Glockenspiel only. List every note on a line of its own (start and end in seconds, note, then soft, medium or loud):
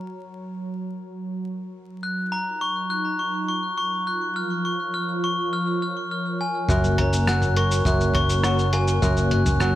2.03 2.31 F#6 medium
2.32 2.60 A#5 medium
2.61 2.89 C#6 medium
2.90 3.18 F#6 medium
3.19 3.36 C#6 medium
3.48 3.65 C#6 medium
3.78 3.94 C#6 medium
4.07 4.24 F#6 medium
4.36 4.64 F6 medium
4.65 4.82 C#6 medium
4.94 5.22 F6 medium
5.24 5.51 C#6 medium
5.53 5.81 F6 medium
5.82 5.99 F6 medium
6.11 6.39 F6 medium
6.41 6.68 G#5 medium
6.69 6.97 F#6 medium
6.98 7.15 A#5 medium
7.27 7.55 F#6 medium
7.57 7.73 C#6 loud
7.86 8.14 F#6 medium
8.15 8.43 C#6 loud
8.44 8.72 C#6 loud
8.73 8.90 G#5 medium
9.02 9.30 F#6 medium
9.31 9.59 F#6 medium
9.60 9.75 F#6 loud